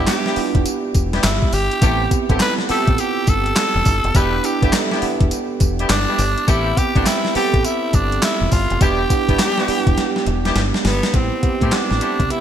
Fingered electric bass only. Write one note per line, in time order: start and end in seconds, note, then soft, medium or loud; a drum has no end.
0.37 muted fingered electric bass stroke medium
0.55 0.64 E1 medium
0.95 1.19 E1 medium
1.24 1.39 G1 loud
1.53 1.68 G1 loud
1.82 2.06 A1 loud
2.30 2.38 G1 medium
2.70 muted fingered electric bass stroke medium
2.88 2.96 A1 medium
3.28 3.52 G1 medium
3.75 3.84 E1 medium
3.86 4.01 G1 medium
4.04 4.13 F1 medium
4.15 4.39 E1 loud
4.62 4.71 G1 medium
5.02 muted fingered electric bass stroke medium
5.21 5.29 E1 medium
5.61 5.85 E1 medium
5.90 6.05 G1 loud
6.19 6.34 G1 medium
6.48 6.72 A1 loud
6.96 7.04 G1 medium
7.36 muted fingered electric bass stroke medium
7.54 7.62 A1 medium
7.94 8.18 G1 medium
8.41 8.50 E1 medium
8.52 8.67 G1 medium
8.71 8.79 F1 medium
8.81 9.05 E1 loud
9.29 9.37 G1 medium
9.68 muted fingered electric bass stroke medium
9.87 9.96 E1 medium
10.27 10.51 E1 medium
10.56 10.71 G1 loud
10.85 11.00 G1 medium
11.14 11.29 A1 loud
11.43 muted fingered electric bass stroke soft
11.61 11.70 A2 medium
11.91 12.00 A1 medium
12.20 12.28 C2 medium